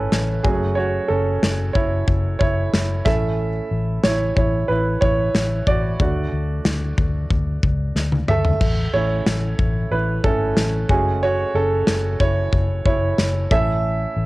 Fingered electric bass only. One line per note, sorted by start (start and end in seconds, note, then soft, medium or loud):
0.12 0.39 A1 medium
0.44 0.98 F#1 medium
1.10 1.37 F#1 medium
1.42 1.69 F#1 medium
1.75 2.02 F#1 medium
2.08 2.35 F#1 medium
2.41 2.67 F#1 medium
2.73 3.00 F#1 medium
3.06 3.59 A1 medium
3.71 3.98 A1 medium
4.04 4.31 A1 medium
4.37 4.63 A1 medium
4.69 4.96 A1 medium
5.02 5.29 A1 medium
5.34 5.61 A1 medium
5.67 5.94 A1 medium
6.00 6.27 D2 medium
6.32 6.59 D2 medium
6.65 6.92 D2 medium
6.98 7.25 D2 medium
7.30 7.57 D2 medium
7.63 7.90 C#2 medium
7.95 8.22 D2 medium
8.28 8.55 D2 medium
8.61 8.88 A1 medium
8.94 9.20 A1 medium
9.26 9.53 A1 medium
9.59 9.86 A1 medium
9.91 10.18 A1 medium
10.24 10.51 G#1 medium
10.57 10.84 A1 medium
10.89 11.43 F#1 medium
11.54 11.81 F#1 medium
11.87 12.14 F#1 medium
12.20 12.47 F#1 medium
12.53 12.80 F#1 medium
12.85 13.12 F#1 medium
13.18 13.45 F#1 medium
13.51 14.05 A1 medium
14.16 14.26 A1 medium